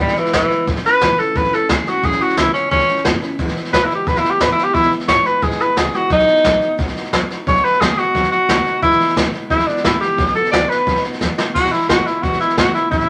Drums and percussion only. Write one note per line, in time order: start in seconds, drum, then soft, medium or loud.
0.08 snare soft
0.16 snare soft
0.25 snare soft
0.33 kick medium
0.33 snare loud
0.33 hi-hat pedal medium
0.50 snare soft
0.67 kick loud
0.67 snare soft
0.76 snare soft
0.84 snare soft
1.01 kick medium
1.01 snare loud
1.01 hi-hat pedal medium
1.18 snare soft
1.35 kick loud
1.35 snare soft
1.44 snare soft
1.52 snare soft
1.69 kick medium
1.69 snare loud
1.69 hi-hat pedal medium
1.86 snare soft
2.03 kick loud
2.03 snare soft
2.11 snare soft
2.21 snare soft
2.28 snare soft
2.37 kick medium
2.37 snare loud
2.37 hi-hat pedal medium
2.54 snare soft
2.71 kick loud
2.71 snare soft
2.80 snare soft
2.88 snare soft
2.96 snare soft
3.05 kick medium
3.05 snare loud
3.05 hi-hat pedal medium
3.22 snare soft
3.39 kick loud
3.39 snare soft
3.48 snare soft
3.56 snare soft
3.65 snare soft
3.73 kick medium
3.73 snare loud
3.73 hi-hat pedal loud
3.90 snare soft
4.07 kick loud
4.07 snare soft
4.15 snare soft
4.24 snare soft
4.40 kick medium
4.40 snare loud
4.40 hi-hat pedal medium
4.58 snare soft
4.74 kick loud
4.74 snare soft
4.82 snare soft
4.91 snare soft
5.00 snare soft
5.08 kick medium
5.08 snare loud
5.08 hi-hat pedal medium
5.25 snare soft
5.42 kick loud
5.42 snare soft
5.51 snare soft
5.60 snare soft
5.77 kick medium
5.77 snare loud
5.77 hi-hat pedal medium
5.93 snare soft
6.10 kick loud
6.10 snare soft
6.19 snare soft
6.27 snare soft
6.36 snare soft
6.44 kick medium
6.44 snare loud
6.44 hi-hat pedal medium
6.62 snare soft
6.79 kick loud
6.79 snare soft
6.87 snare soft
6.96 snare soft
7.04 snare soft
7.13 kick medium
7.13 snare loud
7.13 hi-hat pedal medium
7.30 snare soft
7.47 kick loud
7.47 snare soft
7.56 snare soft
7.65 snare soft
7.73 snare soft
7.81 kick medium
7.81 snare loud
7.81 hi-hat pedal medium
7.98 snare soft
8.15 kick loud
8.15 snare soft
8.23 snare soft
8.32 snare soft
8.49 kick medium
8.49 snare loud
8.49 hi-hat pedal medium
8.66 snare soft
8.82 kick loud
8.82 snare soft
8.91 snare soft
9.00 snare soft
9.08 snare soft
9.17 kick medium
9.17 snare loud
9.17 hi-hat pedal medium
9.33 snare soft
9.50 kick loud
9.50 snare soft
9.59 snare soft
9.68 snare soft
9.77 snare soft
9.84 kick medium
9.84 snare loud
9.84 hi-hat pedal medium
10.01 snare soft
10.18 kick loud
10.18 snare soft
10.27 snare soft
10.35 snare soft
10.45 snare soft
10.53 kick loud
10.53 snare loud
10.53 hi-hat pedal loud
10.70 snare soft
10.87 kick loud
10.87 snare soft
10.96 snare soft
11.04 snare soft
11.13 snare soft
11.21 kick medium
11.21 snare medium
11.21 hi-hat pedal medium
11.38 snare loud
11.55 kick loud
11.55 snare soft
11.55 crash loud
11.65 snare soft
11.73 snare soft
11.81 snare soft
11.89 kick medium
11.89 snare loud
11.89 hi-hat pedal medium
12.06 snare soft
12.23 kick loud
12.23 snare soft
12.33 snare soft
12.40 snare soft
12.49 snare soft
12.57 kick medium
12.57 snare loud
12.57 hi-hat pedal medium
12.75 snare soft
12.92 kick loud
12.92 snare soft
13.00 snare soft